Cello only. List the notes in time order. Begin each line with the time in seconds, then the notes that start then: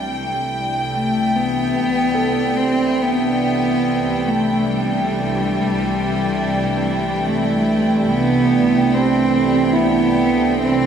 0.92 A3
1.36 B3
2.57 C4
3.02 B3
4.27 A3
4.71 G3
7.26 A3
8.09 B3
8.93 C4
9.75 B3
10.61 C4